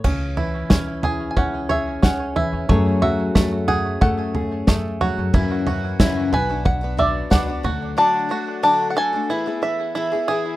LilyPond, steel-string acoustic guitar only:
\new Staff \with { instrumentName = "Steel-string acoustic guitar" } { \time 4/4 \key cis \phrygian \tempo 4 = 91 << { r4 cis'8 e'8 cis'8 gis'4. | <fis a cis' gis'>4 a8 cis'8 a8 gis'4. | r1 | r1 | } \\ { <cis e>8 e2. e8 | fis,8 fis2. fis8 | r1 | r1 | } >> }